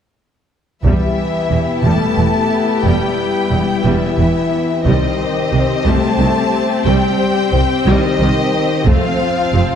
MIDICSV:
0, 0, Header, 1, 8, 480
1, 0, Start_track
1, 0, Tempo, 668598
1, 605, Time_signature, 6, 3, 24, 8
1, 7001, End_track
2, 0, Start_track
2, 0, Title_t, "Violin section"
2, 0, Program_c, 0, 48
2, 599, Note_on_c, 0, 76, 54
2, 1293, Note_off_c, 0, 76, 0
2, 1327, Note_on_c, 0, 81, 57
2, 2035, Note_on_c, 0, 79, 50
2, 2046, Note_off_c, 0, 81, 0
2, 2760, Note_off_c, 0, 79, 0
2, 2766, Note_on_c, 0, 76, 57
2, 3485, Note_on_c, 0, 75, 58
2, 3486, Note_off_c, 0, 76, 0
2, 4191, Note_off_c, 0, 75, 0
2, 4209, Note_on_c, 0, 81, 67
2, 4923, Note_on_c, 0, 79, 59
2, 4928, Note_off_c, 0, 81, 0
2, 5645, Note_off_c, 0, 79, 0
2, 5646, Note_on_c, 0, 75, 70
2, 6364, Note_on_c, 0, 77, 75
2, 6366, Note_off_c, 0, 75, 0
2, 7001, Note_off_c, 0, 77, 0
2, 7001, End_track
3, 0, Start_track
3, 0, Title_t, "Violin section"
3, 0, Program_c, 1, 48
3, 604, Note_on_c, 1, 64, 35
3, 608, Note_on_c, 1, 67, 35
3, 3456, Note_off_c, 1, 64, 0
3, 3458, Note_off_c, 1, 67, 0
3, 3486, Note_on_c, 1, 67, 36
3, 3487, Note_on_c, 1, 72, 39
3, 6338, Note_off_c, 1, 67, 0
3, 6338, Note_off_c, 1, 72, 0
3, 6363, Note_on_c, 1, 65, 54
3, 6367, Note_on_c, 1, 72, 47
3, 7001, Note_off_c, 1, 65, 0
3, 7001, Note_off_c, 1, 72, 0
3, 7001, End_track
4, 0, Start_track
4, 0, Title_t, "Viola section"
4, 0, Program_c, 2, 48
4, 606, Note_on_c, 2, 55, 46
4, 608, Note_on_c, 2, 59, 39
4, 829, Note_off_c, 2, 55, 0
4, 1088, Note_on_c, 2, 52, 27
4, 1146, Note_off_c, 2, 52, 0
4, 1325, Note_on_c, 2, 55, 41
4, 1548, Note_off_c, 2, 55, 0
4, 1567, Note_on_c, 2, 52, 29
4, 1625, Note_off_c, 2, 52, 0
4, 2042, Note_on_c, 2, 55, 43
4, 2267, Note_off_c, 2, 55, 0
4, 2522, Note_on_c, 2, 52, 28
4, 2579, Note_off_c, 2, 52, 0
4, 2755, Note_on_c, 2, 55, 48
4, 2983, Note_off_c, 2, 55, 0
4, 3006, Note_on_c, 2, 52, 34
4, 3064, Note_off_c, 2, 52, 0
4, 3458, Note_off_c, 2, 59, 0
4, 3487, Note_on_c, 2, 55, 43
4, 3487, Note_on_c, 2, 60, 43
4, 3710, Note_off_c, 2, 55, 0
4, 3962, Note_on_c, 2, 48, 37
4, 4020, Note_off_c, 2, 48, 0
4, 4203, Note_on_c, 2, 55, 48
4, 4427, Note_off_c, 2, 55, 0
4, 4443, Note_on_c, 2, 51, 41
4, 4500, Note_off_c, 2, 51, 0
4, 4925, Note_on_c, 2, 55, 56
4, 5148, Note_off_c, 2, 55, 0
4, 5403, Note_on_c, 2, 48, 36
4, 5461, Note_off_c, 2, 48, 0
4, 5646, Note_on_c, 2, 55, 65
4, 5870, Note_off_c, 2, 55, 0
4, 5885, Note_on_c, 2, 51, 49
4, 5943, Note_off_c, 2, 51, 0
4, 6357, Note_off_c, 2, 60, 0
4, 6363, Note_on_c, 2, 57, 67
4, 6365, Note_on_c, 2, 60, 57
4, 6588, Note_off_c, 2, 57, 0
4, 6845, Note_on_c, 2, 48, 38
4, 6902, Note_off_c, 2, 48, 0
4, 7001, Note_off_c, 2, 60, 0
4, 7001, End_track
5, 0, Start_track
5, 0, Title_t, "French horn section"
5, 0, Program_c, 3, 60
5, 600, Note_on_c, 3, 52, 44
5, 1294, Note_off_c, 3, 52, 0
5, 1324, Note_on_c, 3, 57, 52
5, 2030, Note_off_c, 3, 57, 0
5, 2045, Note_on_c, 3, 55, 43
5, 2766, Note_off_c, 3, 55, 0
5, 2767, Note_on_c, 3, 52, 45
5, 3486, Note_off_c, 3, 52, 0
5, 3490, Note_on_c, 3, 51, 48
5, 4208, Note_off_c, 3, 51, 0
5, 4209, Note_on_c, 3, 57, 60
5, 4913, Note_off_c, 3, 57, 0
5, 4932, Note_on_c, 3, 55, 51
5, 5522, Note_off_c, 3, 55, 0
5, 5644, Note_on_c, 3, 51, 62
5, 6351, Note_off_c, 3, 51, 0
5, 6360, Note_on_c, 3, 53, 65
5, 7001, Note_off_c, 3, 53, 0
5, 7001, End_track
6, 0, Start_track
6, 0, Title_t, "Cello section"
6, 0, Program_c, 4, 48
6, 601, Note_on_c, 4, 40, 45
6, 658, Note_off_c, 4, 40, 0
6, 1082, Note_on_c, 4, 40, 33
6, 1140, Note_off_c, 4, 40, 0
6, 1321, Note_on_c, 4, 40, 43
6, 1379, Note_off_c, 4, 40, 0
6, 1563, Note_on_c, 4, 40, 29
6, 1621, Note_off_c, 4, 40, 0
6, 2044, Note_on_c, 4, 40, 46
6, 2102, Note_off_c, 4, 40, 0
6, 2520, Note_on_c, 4, 40, 28
6, 2578, Note_off_c, 4, 40, 0
6, 2763, Note_on_c, 4, 40, 47
6, 2820, Note_off_c, 4, 40, 0
6, 2999, Note_on_c, 4, 40, 34
6, 3057, Note_off_c, 4, 40, 0
6, 3482, Note_on_c, 4, 36, 49
6, 3539, Note_off_c, 4, 36, 0
6, 3964, Note_on_c, 4, 36, 32
6, 4022, Note_off_c, 4, 36, 0
6, 4205, Note_on_c, 4, 36, 50
6, 4263, Note_off_c, 4, 36, 0
6, 4443, Note_on_c, 4, 36, 40
6, 4501, Note_off_c, 4, 36, 0
6, 4923, Note_on_c, 4, 36, 55
6, 4981, Note_off_c, 4, 36, 0
6, 5405, Note_on_c, 4, 36, 38
6, 5463, Note_off_c, 4, 36, 0
6, 5645, Note_on_c, 4, 36, 58
6, 5702, Note_off_c, 4, 36, 0
6, 5886, Note_on_c, 4, 36, 42
6, 5943, Note_off_c, 4, 36, 0
6, 6361, Note_on_c, 4, 41, 61
6, 6418, Note_off_c, 4, 41, 0
6, 6845, Note_on_c, 4, 41, 42
6, 6903, Note_off_c, 4, 41, 0
6, 7001, End_track
7, 0, Start_track
7, 0, Title_t, "Double bass section"
7, 0, Program_c, 5, 48
7, 606, Note_on_c, 5, 28, 39
7, 664, Note_off_c, 5, 28, 0
7, 1086, Note_on_c, 5, 28, 29
7, 1144, Note_off_c, 5, 28, 0
7, 1325, Note_on_c, 5, 28, 45
7, 1383, Note_off_c, 5, 28, 0
7, 1566, Note_on_c, 5, 28, 34
7, 1624, Note_off_c, 5, 28, 0
7, 2043, Note_on_c, 5, 28, 43
7, 2100, Note_off_c, 5, 28, 0
7, 2523, Note_on_c, 5, 28, 31
7, 2581, Note_off_c, 5, 28, 0
7, 2766, Note_on_c, 5, 28, 53
7, 2824, Note_off_c, 5, 28, 0
7, 3002, Note_on_c, 5, 28, 33
7, 3060, Note_off_c, 5, 28, 0
7, 3485, Note_on_c, 5, 36, 41
7, 3543, Note_off_c, 5, 36, 0
7, 3966, Note_on_c, 5, 36, 37
7, 4023, Note_off_c, 5, 36, 0
7, 4207, Note_on_c, 5, 36, 53
7, 4265, Note_off_c, 5, 36, 0
7, 4447, Note_on_c, 5, 36, 40
7, 4505, Note_off_c, 5, 36, 0
7, 4924, Note_on_c, 5, 36, 47
7, 4982, Note_off_c, 5, 36, 0
7, 5407, Note_on_c, 5, 36, 38
7, 5464, Note_off_c, 5, 36, 0
7, 5648, Note_on_c, 5, 36, 55
7, 5705, Note_off_c, 5, 36, 0
7, 5886, Note_on_c, 5, 36, 44
7, 5943, Note_off_c, 5, 36, 0
7, 6366, Note_on_c, 5, 29, 51
7, 6423, Note_off_c, 5, 29, 0
7, 6847, Note_on_c, 5, 29, 42
7, 6905, Note_off_c, 5, 29, 0
7, 7001, End_track
8, 0, Start_track
8, 0, Title_t, "Taiko and cinematic ensemble drums"
8, 608, Note_on_c, 9, 41, 52
8, 680, Note_off_c, 9, 41, 0
8, 3484, Note_on_c, 9, 41, 49
8, 3556, Note_off_c, 9, 41, 0
8, 6365, Note_on_c, 9, 41, 57
8, 6437, Note_off_c, 9, 41, 0
8, 7001, End_track
0, 0, End_of_file